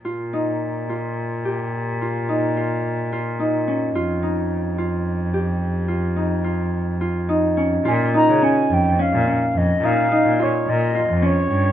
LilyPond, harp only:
\new Staff \with { instrumentName = "Harp" } { \time 7/4 \key bes \dorian \tempo 4 = 108 f'8 ees'4 f'4 g'4 f'8 ees'8 f'4 f'8 ees'8 des'8 | f'8 ees'4 f'4 g'4 f'8 ees'8 f'4 f'8 ees'8 des'8 | f'8 ees'8 des'4 des'8 des'4 ees'8 ees'8 f'4 f'8 des'4 | }